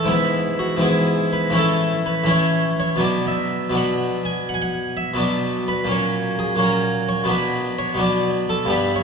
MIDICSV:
0, 0, Header, 1, 2, 480
1, 0, Start_track
1, 0, Tempo, 484262
1, 108, Time_signature, 12, 3, 24, 8
1, 5388, Tempo, 468384
1, 9071, End_track
2, 0, Start_track
2, 0, Title_t, "Harpsichord"
2, 0, Program_c, 0, 6
2, 38, Note_on_c, 0, 44, 47
2, 55, Note_on_c, 0, 52, 43
2, 71, Note_on_c, 0, 59, 42
2, 80, Note_on_c, 0, 64, 44
2, 109, Note_on_c, 0, 71, 81
2, 514, Note_off_c, 0, 71, 0
2, 587, Note_on_c, 0, 66, 73
2, 747, Note_off_c, 0, 44, 0
2, 759, Note_on_c, 0, 44, 49
2, 764, Note_off_c, 0, 52, 0
2, 776, Note_on_c, 0, 52, 41
2, 778, Note_off_c, 0, 59, 0
2, 790, Note_off_c, 0, 64, 0
2, 790, Note_on_c, 0, 59, 37
2, 806, Note_on_c, 0, 64, 39
2, 827, Note_off_c, 0, 66, 0
2, 834, Note_on_c, 0, 68, 63
2, 1248, Note_off_c, 0, 68, 0
2, 1316, Note_on_c, 0, 71, 73
2, 1490, Note_on_c, 0, 45, 51
2, 1494, Note_off_c, 0, 52, 0
2, 1502, Note_off_c, 0, 44, 0
2, 1506, Note_on_c, 0, 52, 41
2, 1518, Note_off_c, 0, 59, 0
2, 1522, Note_off_c, 0, 71, 0
2, 1523, Note_on_c, 0, 61, 43
2, 1524, Note_off_c, 0, 64, 0
2, 1536, Note_on_c, 0, 64, 40
2, 1564, Note_on_c, 0, 69, 81
2, 1967, Note_off_c, 0, 69, 0
2, 2043, Note_on_c, 0, 71, 78
2, 2205, Note_off_c, 0, 45, 0
2, 2217, Note_on_c, 0, 45, 50
2, 2222, Note_off_c, 0, 52, 0
2, 2234, Note_on_c, 0, 52, 42
2, 2235, Note_off_c, 0, 61, 0
2, 2241, Note_off_c, 0, 64, 0
2, 2243, Note_off_c, 0, 71, 0
2, 2245, Note_on_c, 0, 61, 41
2, 2263, Note_on_c, 0, 64, 44
2, 2288, Note_on_c, 0, 73, 79
2, 2692, Note_off_c, 0, 73, 0
2, 2773, Note_on_c, 0, 73, 72
2, 2933, Note_on_c, 0, 47, 50
2, 2944, Note_off_c, 0, 45, 0
2, 2952, Note_on_c, 0, 54, 46
2, 2953, Note_off_c, 0, 52, 0
2, 2959, Note_off_c, 0, 61, 0
2, 2963, Note_on_c, 0, 59, 41
2, 2968, Note_off_c, 0, 64, 0
2, 2970, Note_off_c, 0, 73, 0
2, 2976, Note_on_c, 0, 62, 46
2, 3007, Note_on_c, 0, 74, 81
2, 3209, Note_off_c, 0, 74, 0
2, 3243, Note_on_c, 0, 76, 80
2, 3651, Note_off_c, 0, 47, 0
2, 3663, Note_on_c, 0, 47, 50
2, 3666, Note_off_c, 0, 54, 0
2, 3678, Note_on_c, 0, 54, 41
2, 3680, Note_off_c, 0, 59, 0
2, 3692, Note_on_c, 0, 59, 40
2, 3693, Note_off_c, 0, 62, 0
2, 3708, Note_on_c, 0, 62, 41
2, 3728, Note_off_c, 0, 76, 0
2, 3738, Note_on_c, 0, 78, 80
2, 4207, Note_off_c, 0, 78, 0
2, 4215, Note_on_c, 0, 80, 86
2, 4444, Note_off_c, 0, 80, 0
2, 4451, Note_on_c, 0, 78, 92
2, 4501, Note_on_c, 0, 80, 74
2, 4512, Note_off_c, 0, 78, 0
2, 4572, Note_off_c, 0, 80, 0
2, 4576, Note_on_c, 0, 78, 96
2, 4916, Note_off_c, 0, 78, 0
2, 4923, Note_on_c, 0, 76, 88
2, 5079, Note_off_c, 0, 47, 0
2, 5091, Note_off_c, 0, 54, 0
2, 5091, Note_on_c, 0, 47, 58
2, 5097, Note_off_c, 0, 59, 0
2, 5105, Note_off_c, 0, 62, 0
2, 5107, Note_on_c, 0, 54, 48
2, 5119, Note_on_c, 0, 59, 45
2, 5123, Note_off_c, 0, 76, 0
2, 5135, Note_on_c, 0, 62, 45
2, 5160, Note_on_c, 0, 74, 92
2, 5632, Note_off_c, 0, 74, 0
2, 5640, Note_on_c, 0, 71, 83
2, 5806, Note_on_c, 0, 46, 56
2, 5811, Note_off_c, 0, 54, 0
2, 5814, Note_off_c, 0, 47, 0
2, 5823, Note_on_c, 0, 54, 46
2, 5829, Note_off_c, 0, 59, 0
2, 5838, Note_off_c, 0, 62, 0
2, 5838, Note_on_c, 0, 61, 43
2, 5840, Note_off_c, 0, 71, 0
2, 5881, Note_on_c, 0, 73, 89
2, 6287, Note_off_c, 0, 73, 0
2, 6365, Note_on_c, 0, 68, 83
2, 6526, Note_off_c, 0, 46, 0
2, 6538, Note_off_c, 0, 54, 0
2, 6538, Note_on_c, 0, 46, 51
2, 6551, Note_on_c, 0, 54, 44
2, 6555, Note_off_c, 0, 61, 0
2, 6564, Note_off_c, 0, 68, 0
2, 6569, Note_on_c, 0, 61, 42
2, 6609, Note_on_c, 0, 70, 65
2, 7011, Note_off_c, 0, 70, 0
2, 7080, Note_on_c, 0, 73, 83
2, 7236, Note_on_c, 0, 47, 61
2, 7239, Note_off_c, 0, 54, 0
2, 7252, Note_on_c, 0, 54, 50
2, 7263, Note_off_c, 0, 46, 0
2, 7263, Note_on_c, 0, 59, 49
2, 7279, Note_off_c, 0, 61, 0
2, 7281, Note_off_c, 0, 73, 0
2, 7285, Note_on_c, 0, 62, 51
2, 7310, Note_on_c, 0, 71, 91
2, 7788, Note_off_c, 0, 71, 0
2, 7796, Note_on_c, 0, 73, 85
2, 7944, Note_off_c, 0, 47, 0
2, 7957, Note_on_c, 0, 47, 60
2, 7963, Note_off_c, 0, 54, 0
2, 7975, Note_on_c, 0, 54, 49
2, 7979, Note_off_c, 0, 59, 0
2, 7991, Note_on_c, 0, 59, 50
2, 7993, Note_off_c, 0, 62, 0
2, 7999, Note_off_c, 0, 73, 0
2, 8005, Note_on_c, 0, 62, 50
2, 8034, Note_on_c, 0, 74, 91
2, 8442, Note_off_c, 0, 74, 0
2, 8522, Note_on_c, 0, 69, 87
2, 8685, Note_on_c, 0, 43, 59
2, 8689, Note_off_c, 0, 47, 0
2, 8698, Note_on_c, 0, 55, 49
2, 8699, Note_off_c, 0, 54, 0
2, 8703, Note_off_c, 0, 59, 0
2, 8714, Note_off_c, 0, 62, 0
2, 8715, Note_on_c, 0, 59, 48
2, 8730, Note_on_c, 0, 62, 52
2, 8754, Note_off_c, 0, 69, 0
2, 8760, Note_on_c, 0, 71, 79
2, 8992, Note_off_c, 0, 71, 0
2, 8997, Note_on_c, 0, 73, 84
2, 9071, Note_off_c, 0, 43, 0
2, 9071, Note_off_c, 0, 55, 0
2, 9071, Note_off_c, 0, 59, 0
2, 9071, Note_off_c, 0, 62, 0
2, 9071, Note_off_c, 0, 73, 0
2, 9071, End_track
0, 0, End_of_file